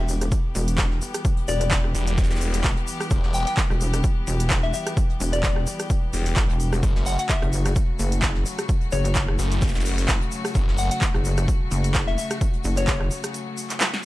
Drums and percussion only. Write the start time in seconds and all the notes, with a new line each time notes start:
0.08 open hi-hat, shaker
0.21 cross-stick, closed hi-hat, shaker
0.31 kick, closed hi-hat, shaker
0.55 open hi-hat, shaker
0.68 closed hi-hat, shaker
0.78 kick, snare, clap, closed hi-hat, shaker
0.91 snare
1.02 open hi-hat, shaker
1.14 cross-stick, closed hi-hat, shaker
1.25 kick, closed hi-hat, shaker
1.37 closed hi-hat
1.48 open hi-hat, shaker
1.60 closed hi-hat, shaker
1.71 kick, snare, clap, closed hi-hat, shaker
1.84 cross-stick
1.95 open hi-hat, shaker
2.07 closed hi-hat, shaker
2.18 kick, snare, closed hi-hat, shaker
2.23 snare, shaker
2.30 snare, shaker
2.36 snare, shaker
2.41 open hi-hat, shaker
2.54 snare, closed hi-hat, shaker
2.64 kick, snare, clap, closed hi-hat, shaker
2.77 closed hi-hat
2.87 open hi-hat, shaker
3.00 cross-stick, closed hi-hat, open hi-hat, shaker
3.11 kick, closed hi-hat, shaker
3.24 snare
3.34 open hi-hat, shaker
3.47 snare, closed hi-hat, shaker
3.57 kick, snare, clap, closed hi-hat, shaker
3.70 cross-stick, closed hi-hat
3.81 open hi-hat, shaker
3.94 cross-stick, closed hi-hat, shaker
4.04 kick, closed hi-hat, shaker
4.27 open hi-hat, shaker
4.40 closed hi-hat, shaker
4.50 kick, snare, clap, closed hi-hat, shaker
4.63 snare
4.73 open hi-hat, shaker
4.87 cross-stick, closed hi-hat, shaker
4.97 kick, closed hi-hat, shaker
5.10 closed hi-hat
5.20 open hi-hat, shaker
5.33 closed hi-hat, shaker
5.43 kick, snare, clap, closed hi-hat, shaker
5.56 cross-stick
5.67 open hi-hat, shaker
5.80 cross-stick, closed hi-hat, shaker
5.90 kick, closed hi-hat, shaker
6.13 open hi-hat, shaker
6.26 snare, closed hi-hat, shaker
6.36 kick, snare, clap, closed hi-hat, shaker
6.50 closed hi-hat
6.60 open hi-hat, shaker
6.72 cross-stick, closed hi-hat, open hi-hat, shaker
6.83 kick, closed hi-hat, shaker
6.96 snare
7.06 open hi-hat, shaker
7.19 snare, closed hi-hat, shaker
7.29 kick, snare, clap, closed hi-hat, shaker
7.42 cross-stick, closed hi-hat
7.53 open hi-hat, shaker
7.66 cross-stick, closed hi-hat, shaker
7.75 kick, closed hi-hat, shaker
7.99 open hi-hat, shaker
8.12 closed hi-hat, shaker
8.22 kick, snare, clap, closed hi-hat, shaker
8.35 snare
8.46 open hi-hat, shaker
8.59 cross-stick, closed hi-hat, shaker
8.68 kick, closed hi-hat, shaker
8.81 closed hi-hat
8.92 open hi-hat, shaker
9.05 closed hi-hat, shaker
9.15 kick, snare, clap, closed hi-hat, shaker
9.28 cross-stick
9.39 open hi-hat, shaker
9.51 closed hi-hat, shaker
9.61 kick, snare, closed hi-hat, shaker
9.68 snare, shaker
9.74 snare, shaker
9.80 snare, shaker
9.85 open hi-hat, shaker
9.98 snare, closed hi-hat, shaker
10.08 kick, snare, clap, closed hi-hat, shaker
10.21 closed hi-hat
10.31 open hi-hat, shaker
10.45 cross-stick, closed hi-hat, open hi-hat, shaker
10.55 kick, closed hi-hat, shaker
10.69 snare
10.78 open hi-hat, shaker
10.91 snare, closed hi-hat, shaker
11.01 kick, snare, clap, closed hi-hat, shaker
11.14 cross-stick, closed hi-hat
11.25 open hi-hat, shaker
11.37 cross-stick, closed hi-hat, shaker
11.48 kick, closed hi-hat, shaker
11.71 open hi-hat, shaker
11.84 closed hi-hat, shaker
11.94 kick, snare, clap, closed hi-hat, shaker
12.08 snare
12.18 open hi-hat, shaker
12.31 cross-stick, closed hi-hat, shaker
12.41 kick, closed hi-hat, shaker
12.53 closed hi-hat
12.64 open hi-hat, shaker
12.77 closed hi-hat, shaker
12.87 kick, snare, clap, closed hi-hat, shaker
13.01 cross-stick
13.11 open hi-hat, shaker
13.23 cross-stick, closed hi-hat, shaker
13.34 closed hi-hat, shaker
13.57 open hi-hat, shaker
13.70 snare, clap, closed hi-hat, shaker
13.80 snare, clap, closed hi-hat, shaker
13.93 snare, closed hi-hat